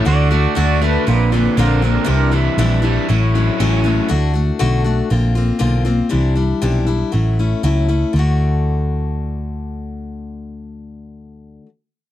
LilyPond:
<<
  \new Staff \with { instrumentName = "Pedal steel guitar" } { \time 4/4 \key d \major \tempo 4 = 119 <fis' d''>8 <fis' d''>8 <fis' d''>8 <d' b'>8 <d' b'>8 <d' b'>8 <d' bes'>8 <d' bes'>8 | <d' bes'>8 e''2. r8 | r1 | r1 |
r1 | r1 | }
  \new Staff \with { instrumentName = "Steel-string acoustic guitar" } { \time 4/4 \key d \major <d a d' fis'>8 <a d' fis'>8 <d a d' fis'>8 <a d' fis'>8 <d bes c' f'>8 <bes c' f'>8 <bes, d bes c' f'>8 <bes c' f'>8 | <c e g d' e'>8 <g d' e'>8 <c e g d' e'>8 <g d' e'>8 <fis a cis' e'>8 <a cis' e'>8 <a, fis a cis' e'>8 <a cis' e'>8 | <d a d' fis'>8 <a d' fis'>8 <d a d' fis'>8 <a d' fis'>8 <d bes c' f'>8 <bes c' f'>8 <bes, d bes c' f'>8 <bes c' f'>8 | <c e g d' e'>8 <g d' e'>8 <c e g d' e'>8 <g d' e'>8 <fis a cis' e'>8 <a cis' e'>8 <a, fis a cis' e'>8 <a cis' e'>8 |
<d a d' fis'>1~ | <d a d' fis'>1 | }
  \new Staff \with { instrumentName = "Overdriven electric guitar" } { \clef bass \time 4/4 \key d \major d8 a8 d8 a8 bes,8 d8 c'8 d8 | c8 e8 e8 g8 a,8 fis8 cis'8 fis8 | r1 | r1 |
r1 | r1 | }
  \new Staff \with { instrumentName = "Picked electric bass" } { \clef bass \time 4/4 \key d \major d,4 d,4 bes,,4 bes,,4 | c,4 bes,,4 a,,4 a,,4 | d,4 b,,4 bes,,4 b,,4 | c,4 b,,4 a,,4 cis,4 |
d,1~ | d,1 | }
>>